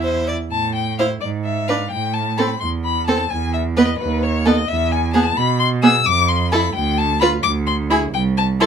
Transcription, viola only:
0, 0, Header, 1, 2, 480
1, 0, Start_track
1, 0, Key_signature, 0, "minor"
1, 0, Tempo, 482703
1, 514, Time_signature, 6, 3, 24, 8
1, 984, Tempo, 464756
1, 3384, Tempo, 459770
1, 8967, End_track
2, 0, Start_track
2, 0, Title_t, "Viola"
2, 0, Program_c, 0, 41
2, 0, Note_on_c, 0, 64, 41
2, 301, Note_off_c, 0, 64, 0
2, 985, Note_on_c, 0, 64, 49
2, 1096, Note_off_c, 0, 64, 0
2, 1708, Note_on_c, 0, 62, 42
2, 1819, Note_off_c, 0, 62, 0
2, 2425, Note_on_c, 0, 60, 46
2, 2536, Note_off_c, 0, 60, 0
2, 3143, Note_on_c, 0, 60, 50
2, 3255, Note_off_c, 0, 60, 0
2, 3861, Note_on_c, 0, 59, 54
2, 3972, Note_off_c, 0, 59, 0
2, 4572, Note_on_c, 0, 59, 49
2, 4682, Note_off_c, 0, 59, 0
2, 5298, Note_on_c, 0, 59, 56
2, 5405, Note_off_c, 0, 59, 0
2, 6010, Note_on_c, 0, 59, 55
2, 6122, Note_off_c, 0, 59, 0
2, 6740, Note_on_c, 0, 64, 61
2, 6846, Note_off_c, 0, 64, 0
2, 7453, Note_on_c, 0, 65, 60
2, 7563, Note_off_c, 0, 65, 0
2, 8172, Note_on_c, 0, 64, 63
2, 8283, Note_off_c, 0, 64, 0
2, 8905, Note_on_c, 0, 64, 62
2, 8967, Note_off_c, 0, 64, 0
2, 8967, End_track
0, 0, End_of_file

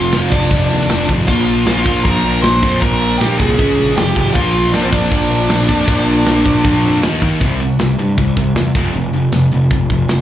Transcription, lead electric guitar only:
0, 0, Header, 1, 2, 480
1, 0, Start_track
1, 0, Tempo, 382653
1, 1613, Time_signature, 4, 2, 24, 8
1, 12809, End_track
2, 0, Start_track
2, 0, Title_t, "Lead electric guitar"
2, 0, Program_c, 0, 29
2, 0, Note_on_c, 0, 65, 74
2, 0, Note_on_c, 0, 77, 93
2, 355, Note_off_c, 0, 77, 0
2, 367, Note_off_c, 0, 65, 0
2, 376, Note_on_c, 0, 74, 94
2, 415, Note_on_c, 0, 62, 73
2, 1305, Note_off_c, 0, 74, 0
2, 1324, Note_off_c, 0, 62, 0
2, 1600, Note_on_c, 0, 77, 93
2, 1633, Note_on_c, 0, 65, 73
2, 2071, Note_off_c, 0, 65, 0
2, 2072, Note_off_c, 0, 77, 0
2, 2087, Note_on_c, 0, 77, 96
2, 2107, Note_on_c, 0, 65, 70
2, 2548, Note_off_c, 0, 65, 0
2, 2552, Note_on_c, 0, 82, 107
2, 2586, Note_off_c, 0, 77, 0
2, 2588, Note_on_c, 0, 70, 85
2, 3010, Note_off_c, 0, 82, 0
2, 3029, Note_off_c, 0, 70, 0
2, 3038, Note_on_c, 0, 84, 107
2, 3074, Note_on_c, 0, 72, 77
2, 3512, Note_off_c, 0, 72, 0
2, 3521, Note_off_c, 0, 84, 0
2, 3526, Note_on_c, 0, 82, 99
2, 3562, Note_on_c, 0, 70, 77
2, 3985, Note_on_c, 0, 79, 94
2, 3997, Note_off_c, 0, 70, 0
2, 4016, Note_on_c, 0, 67, 79
2, 4026, Note_off_c, 0, 82, 0
2, 4239, Note_off_c, 0, 67, 0
2, 4239, Note_off_c, 0, 79, 0
2, 4239, Note_on_c, 0, 80, 100
2, 4259, Note_on_c, 0, 68, 81
2, 4928, Note_off_c, 0, 68, 0
2, 4968, Note_off_c, 0, 80, 0
2, 4978, Note_on_c, 0, 79, 96
2, 5001, Note_on_c, 0, 67, 73
2, 5435, Note_off_c, 0, 79, 0
2, 5436, Note_off_c, 0, 67, 0
2, 5440, Note_on_c, 0, 77, 98
2, 5468, Note_on_c, 0, 65, 76
2, 5909, Note_off_c, 0, 65, 0
2, 5925, Note_on_c, 0, 74, 92
2, 5942, Note_on_c, 0, 62, 73
2, 5943, Note_off_c, 0, 77, 0
2, 6040, Note_off_c, 0, 74, 0
2, 6045, Note_on_c, 0, 72, 83
2, 6051, Note_off_c, 0, 62, 0
2, 6071, Note_on_c, 0, 60, 65
2, 6102, Note_off_c, 0, 72, 0
2, 6122, Note_off_c, 0, 60, 0
2, 6177, Note_on_c, 0, 74, 89
2, 6195, Note_on_c, 0, 62, 66
2, 8765, Note_off_c, 0, 74, 0
2, 8773, Note_off_c, 0, 62, 0
2, 12809, End_track
0, 0, End_of_file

